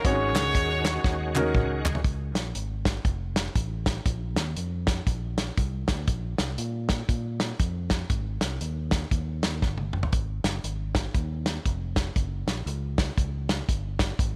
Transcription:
Already playing: D#3 C#4
0.04 G#1 G#2 G#3 C4 D#4 F#4 G#4 C#5, kick, closed hi-hat
0.10 C#4
0.35 C#2, snare, clap, closed hi-hat
0.55 D#2, kick, closed hi-hat
0.85 snare, clap, closed hi-hat
1.04 D#2, kick, snare
1.35 C#4 D#4 F#4 A#4, clap, high tom
1.55 C#2, kick, mid tom
1.85 clap, floor tom
1.95 floor tom
2.04 C#2, kick, closed hi-hat
2.35 A#1, snare, closed hi-hat
2.55 G#1, closed hi-hat
2.85 kick, snare, closed hi-hat
3.05 F1, kick, closed hi-hat
3.36 snare, closed hi-hat
3.55 A1, kick, closed hi-hat
3.86 kick, snare, closed hi-hat
4.06 A#1, kick, closed hi-hat
4.36 D#2, snare, closed hi-hat
4.56 F2, closed hi-hat
4.87 kick, snare, closed hi-hat
5.07 A#1, kick, closed hi-hat
5.38 snare, closed hi-hat
5.58 C2, kick, closed hi-hat
5.88 D2, kick, snare, closed hi-hat
6.08 A#1, kick, closed hi-hat
6.38 C2, snare, closed hi-hat
6.58 A#2, closed hi-hat
6.89 kick, snare, closed hi-hat
7.09 A#2, kick, closed hi-hat
7.40 snare, closed hi-hat
7.59 F2, kick, closed hi-hat
7.90 kick, snare, closed hi-hat
8.10 G#1, kick, closed hi-hat
8.41 C2, snare, closed hi-hat
8.61 D#2, closed hi-hat
8.91 kick, snare, closed hi-hat
9.11 D#2, kick, closed hi-hat
9.43 snare, closed hi-hat
9.62 G1, kick, snare
9.78 high tom
9.93 mid tom
10.03 floor tom
10.13 G#1, kick, closed hi-hat
10.44 F#1, snare, closed hi-hat
10.64 G#1, closed hi-hat
10.95 kick, snare, closed hi-hat
11.14 D#2, kick, closed hi-hat
11.46 snare, closed hi-hat
11.66 F1, kick, closed hi-hat
11.96 kick, snare, closed hi-hat
12.16 F#1, kick, closed hi-hat
12.47 A#1, snare, closed hi-hat
12.66 C#2, closed hi-hat
12.98 kick, snare, closed hi-hat
13.17 C#2, kick, closed hi-hat
13.49 snare, closed hi-hat
13.69 G1, kick, closed hi-hat
13.99 kick, snare, closed hi-hat
14.19 G#1, kick, closed hi-hat

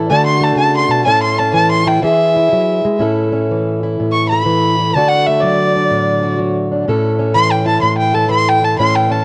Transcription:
Already playing: E3 A4
0.10 D3 A3 D4 F#4 A5
0.26 C6
0.41 A3 A5
0.56 C#3 A5
0.77 C6
0.89 B2 A5
1.05 A2 C#4 E4 A4 A5
1.23 C6
1.39 C#4 A5
1.54 E3 A5
1.71 C6
1.87 E4 G5
2.03 E3 E4 G#4 E5
2.36 E4
2.53 F#3
2.85 G#3
2.99 A2 C#4 E4 A4
3.32 C#4
3.51 E3
3.83 E4
4.00 A2
4.12 C#6
4.28 B5
4.33 A4
4.46 E3
4.79 E4
4.95 D3 A3 D4 F#4 A5
5.08 F#5
5.26 A3 E5
5.40 F#3 D5
5.76 D4
5.91 A2
6.23 F#4
6.39 F#3
6.72 D4
6.88 A2 C#4 E4 A4
7.19 C#4
7.34 E3 C6
7.51 G5
7.66 E4 A5
7.81 A2 C6
7.98 G5
8.14 A4 A5
8.29 E3 C6
8.48 G5
8.62 E4 A5
8.78 A2 C#4 E4 A4 C6
8.95 G5
9.10 C#4 A5

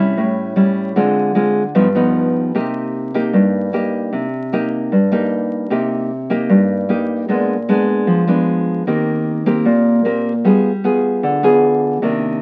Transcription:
Already playing: C3 G3 C#4 E4
0.17 A2
0.56 G3 C#4 E4
0.96 D3 G#3 C4 F4
1.35 G#3 C4 F4
1.75 G2 F3 B3 D#4
1.95 F3 B3 D#4
2.55 C3 A#3 D#4 G4
3.14 A#3 D#4 G4
3.33 G2
3.73 A#3 D#4 G4
4.13 C3
4.53 A#3 D#4 G4
4.92 G2
5.12 A#3 D#4 G4
5.70 C3 A#3 D#4 G4
6.30 A#3 D#4 G4
6.49 G2
6.89 A#3 D#4 G4
7.28 A#2 G#3 B3 D4
7.69 G#3 B3 D4
8.07 F3
8.27 G#3 B3 D4
8.87 D#3 A#3 C4 G4
9.46 A#3 C4 G4
9.65 A#2
10.05 A#3 C4 G4
10.45 G3 B3 F4 G#4
10.84 B3 F4 G#4
11.23 D3
11.43 B3 F4 G#4
12.02 C3 D#3 A#3 D4

